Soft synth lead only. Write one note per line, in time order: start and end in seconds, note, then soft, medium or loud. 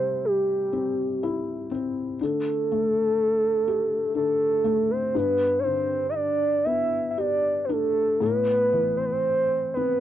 0.00 0.26 C5 medium
0.25 1.71 G4 medium
2.22 4.13 A4 medium
4.16 4.92 A4 medium
4.91 5.18 C5 medium
5.16 5.61 B4 medium
5.59 6.07 C5 medium
5.59 5.64 D5 medium
6.09 6.16 E5 medium
6.15 6.66 D5 medium
6.64 7.11 E5 medium
7.11 7.20 E5 medium
7.18 7.66 D5 medium
7.65 7.73 B4 medium
7.71 8.21 A4 medium
8.22 8.99 B4 medium
8.97 9.06 C5 medium
9.05 9.13 B4 medium
9.12 9.73 C5 medium
9.74 10.00 B4 medium